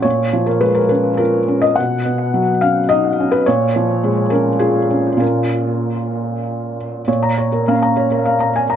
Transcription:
X:1
M:3/4
L:1/16
Q:1/4=104
K:Bbphr
V:1 name="Felt piano"
d3 B c B c2 B3 e | ^f6 =f2 ^d3 =B | d6 B2 A4 | B8- B2 z2 |
[K:Bbm] d b d B f b d B f b a b |]
V:2 name="Felt piano"
B,,2 F,2 A,2 D2 F2 D2 | =B,,2 =B,2 ^F,2 ^C2 ^D2 C2 | B,,2 F,2 A,2 D2 F2 D2 | [B,,B,DF]12 |
[K:Bbm] B,,4 [B,D]8 |]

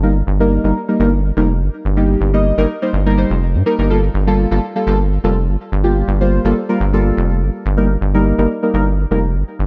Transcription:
X:1
M:4/4
L:1/16
Q:"Swing 16ths" 1/4=124
K:Eblyd
V:1 name="Synth stab"
[G,B,EB] z2 [G,B,EB]2 [G,B,EB] z [G,B,EB] [G,B,EB] z2 [G,B,EB] z4 | [G,B,EG]3 [G,B,Ee]2 [G,B,EB] z [G,B,Ec] z [G,B,EB] [G,B,Ec] z3 [G,B,EB] [G,B,EB] | [G,B,FA] z2 [G,B,FA]2 [G,B,FA] z [G,B,FA] [G,B,FA] z2 [G,B,FA] z4 | [G,B,FG]3 [G,B,Fc]2 [G,B,FA] z [G,B,FB] z [G,B,FA]6- [G,B,FA] |
[G,B,EB] z2 [G,B,EB]2 [G,B,EB] z [G,B,EB] [G,B,EB] z2 [G,B,EB] z4 |]
V:2 name="Analog synth bass" clef=bass
G,,,2 G,,,3 G,,, z2 G,,,3 F,,,2 G,,, z G,,,- | G,,,2 G,,,3 G,,, z2 G,,,3 F,,,2 G,, z G,,,- | G,,,2 G,,,3 G,,, z2 G,,,3 F,,,2 G,,, z G,,,- | G,,,2 G,,,3 G,,, z2 G,,,3 F,,,2 G,,, z G,,,- |
G,,,2 G,,,3 G,,, z2 G,,,3 F,,,2 G,,, z G,,, |]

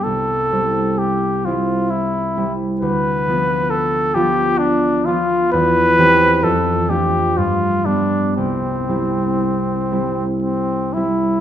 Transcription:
X:1
M:3/4
L:1/8
Q:1/4=64
K:C
V:1 name="Trumpet"
A2 G F E z | B2 A G D F | B2 A G F D | C4 C E |]
V:2 name="Harp"
[C,,G,] [G,CE]2 [G,CE]2 [G,CE] | D,, [F,B,F]2 [F,B,F]2 [F,B,F] | E,, [E,CG] F,, [A,DF] G,, [G,B,D] | C,, [G,CE]2 [G,CE]2 [G,CE] |]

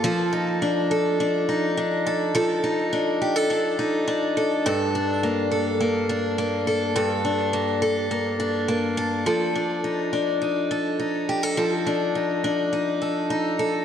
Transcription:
X:1
M:4/4
L:1/16
Q:1/4=104
K:Fmix
V:1 name="Steel-string acoustic guitar"
[F,A]2 E2 D2 A2 D2 E2 D2 A2 | [F,A]2 E2 D2 G A D2 E2 D2 A2 | [G,,A]2 D2 B,2 A2 B,2 D2 B,2 A2 | [G,,A]2 D2 B,2 A2 B,2 D2 B,2 A2 |
[F,A]2 D2 E2 D2 E2 A2 E2 G A | [F,A]2 D2 E2 D2 E2 A2 E2 A2 |]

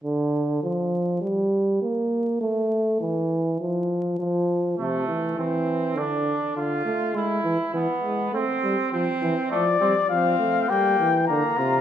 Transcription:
X:1
M:4/4
L:1/8
Q:1/4=101
K:Dm
V:1 name="Trumpet"
z8 | z8 | z8 | z8 |
d2 f2 g2 b2 |]
V:2 name="Trumpet"
z8 | z8 | A,2 C2 D2 F2 | E2 =B,2 C2 C2 |
A, C C2 B, z B, F |]
V:3 name="Euphonium" clef=bass
D,2 F,2 G,2 B,2 | A,2 E,2 F,2 F,2 | C, E, E,2 D, z D, A, | ^G, E, E, G, A, =G, F, E, |
F, G, F, A, G, E, D, C, |]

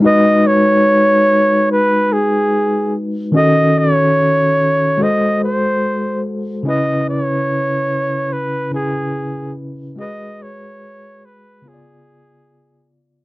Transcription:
X:1
M:4/4
L:1/8
Q:"Swing 16ths" 1/4=72
K:G#m
V:1 name="Flugelhorn"
d c3 B G2 z | d c3 d ^B2 z | d c3 B G2 z | d c2 B G3 z |]
V:2 name="Tine electric piano"
[G,DFB]8 | [D,CF=A]4 [G,FA^B]4 | [C,CEB]4- [C,CEB] [C,CEB]3 | [G,FGB]4 [C,B,^Ec=d]4 |]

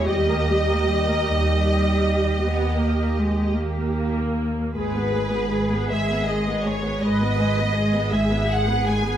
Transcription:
X:1
M:12/8
L:1/16
Q:3/8=52
K:G#m
V:1 name="Violin section"
d16- d2 z6 | B6 e2 d2 c2 d6 e2 f2 g2 |]
V:2 name="Violin section"
d16- d2 z6 | B6 e2 d2 c2 d6 e2 f2 g2 |]
V:3 name="Cello section"
=G16- G4- G z3 | G12 B2 B2 G8 |]
V:4 name="Viola section"
[=G,=G] [A,A] [G,G] [A,A] [G,G] [A,A] G,6 B,2 A,2 ^G,2 A,6 | [G,G] [B,B] [G,G] [B,B] [G,G] [B,B] [G,G] [B,B] [G,G] [B,B] [G,G] [B,B] [G,G] [B,B] [G,G] [B,B] [G,G] [B,B] [G,G] [B,B] [G,G] [B,B] [G,G] [B,B] |]
V:5 name="Double bass section" clef=bass
D,,6 D,,6 D,,6 D,,6 | G,,,6 G,,,6 G,,,6 G,,,6 |]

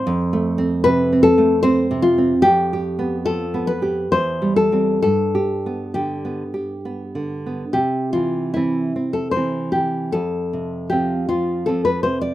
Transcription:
X:1
M:3/4
L:1/16
Q:1/4=74
K:C
V:1 name="Nylon-string guitar"
c4 B2 A2 c2 F2 | G4 A2 B2 c2 A2 | A4 G4 z4 | G2 F2 E3 A c2 G2 |
A4 G2 F2 A B c d |]
V:2 name="Nylon-string guitar" clef=bass
(3F,,2 A,2 C2 (3C,2 C2 A,2 (3C2 C,2 C2 | (3F,,2 G2 B,2 (3F,2 B,2 G2 (3E,,2 G,2 [G,C]2 | (3G,,2 G2 B,2 (3D,2 B,2 G2 (3B,2 D,2 B,2 | C,2 E,2 [E,C]2 C2 [E,C]2 E,2 |
F,,2 C,2 [F,C]2 F,2 [F,C]2 C,2 |]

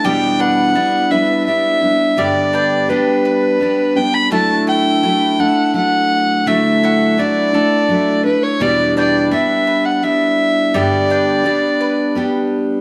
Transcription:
X:1
M:3/4
L:1/16
Q:1/4=84
K:D
V:1 name="Fiddle"
g2 f4 e2 e4 | d4 B6 g b | a2 g4 f2 f4 | e4 d6 B c |
d2 d2 e3 f e4 | d8 z4 |]
V:2 name="Mandolin"
G,2 [DB]2 D2 B6 | G,2 [DBg]2 D2 B6 | A,2 [EA]2 E2 A6 | A,2 [EAf]2 E2 A6 |
G,2 [DBg]2 D2 B6 | G,2 [DBg]2 D2 B6 |]
V:3 name="Steel-string acoustic guitar"
[E,,B,,G,B,DE]4 [G,B,DE]2 [G,B,DE]2 [G,B,DE]2 [G,B,DE]2 | [G,,D,G,B,DG]4 [G,B,DG]4 [G,B,DG]2 [G,B,DG]2 | [D,F,A,DE]4 [F,A,DE]2 [A,DE]2 [F,A,DE]4 | [D,F,A,DE]4 [F,A,DE]2 [A,DE]2 [F,A,DE]2 [A,DE]2 |
[E,,B,,G,B,DE]4 [G,B,DE]4 [G,B,DE]4 | [G,,D,G,B,DG]4 [G,B,DG]4 [G,B,DG]4 |]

